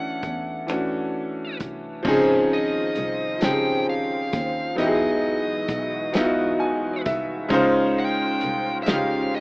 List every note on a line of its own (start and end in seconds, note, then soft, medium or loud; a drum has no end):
0.00 0.19 D2 loud
0.00 0.29 E3 medium
0.00 0.30 A3 medium
0.00 0.30 C#4 medium
0.00 0.31 D4 medium
0.00 0.32 A4 medium
0.00 1.57 F#5 medium
0.23 1.56 E2 medium
0.23 kick medium
0.23 closed hi-hat medium
0.67 1.66 E3 medium
0.67 1.66 A3 medium
0.67 1.67 C#4 medium
0.67 finger snap loud
0.67 closed hi-hat medium
0.71 1.68 D4 medium
0.71 1.68 F#4 medium
1.60 2.02 C2 medium
1.60 kick medium
1.60 closed hi-hat medium
2.03 2.92 C#2 loud
2.03 4.75 D#3 medium
2.03 3.02 F3 medium
2.03 3.03 C4 medium
2.03 3.03 C#4 medium
2.03 4.75 F4 medium
2.03 4.75 C5 medium
2.03 kick loud
2.03 crash loud
2.07 3.04 D#4 medium
2.07 3.05 G#4 loud
2.53 3.45 D#5 medium
2.95 3.38 C2 loud
2.95 closed hi-hat medium
3.39 4.33 C#2 medium
3.39 4.38 F3 medium
3.39 4.39 C4 medium
3.39 4.40 C#4 medium
3.39 4.40 D#4 medium
3.39 snare loud
3.39 closed hi-hat medium
3.44 3.49 G4 medium
3.44 3.85 G5 loud
3.51 4.44 G#4 medium
3.89 4.75 F5 loud
4.33 4.74 D#2 medium
4.33 kick medium
4.33 closed hi-hat medium
4.75 5.65 E2 medium
4.75 7.47 E3 medium
4.75 5.74 F#3 medium
4.75 7.47 G#3 medium
4.75 5.75 B3 medium
4.75 5.76 D#4 medium
4.75 5.76 E4 medium
4.75 7.47 F#4 medium
4.75 closed hi-hat medium
4.80 4.86 G4 medium
4.80 7.02 D#5 medium
4.87 5.80 G#4 medium
5.68 7.01 B1 medium
5.68 kick medium
5.68 closed hi-hat medium
6.12 7.11 F#3 medium
6.12 7.12 B3 medium
6.12 7.12 D#4 medium
6.12 snare loud
6.12 closed hi-hat medium
6.16 7.13 E4 medium
6.16 6.22 F4 medium
6.24 7.17 F#4 medium
6.60 7.02 G#5 medium
7.06 7.47 C2 medium
7.06 7.48 E5 medium
7.06 kick medium
7.06 closed hi-hat medium
7.49 8.38 C#2 loud
7.49 8.47 G#3 loud
7.49 9.40 C#4 medium
7.49 8.48 C#4 medium
7.49 8.49 D#4 medium
7.49 9.40 F4 medium
7.49 8.49 F4 loud
7.49 9.40 C5 medium
7.49 kick loud
7.49 closed hi-hat medium
7.54 8.50 C5 loud
7.99 8.78 G5 medium
8.41 8.84 C2 medium
8.41 closed hi-hat medium
8.83 9.40 G#3 medium
8.83 9.40 C#4 medium
8.83 8.88 E5 medium
8.83 closed hi-hat medium
8.88 9.40 C#2 medium
8.88 9.40 D#4 medium
8.88 9.40 F4 medium
8.88 9.40 G4 medium
8.88 9.35 F5 medium
8.88 snare loud
9.35 9.40 D#5 medium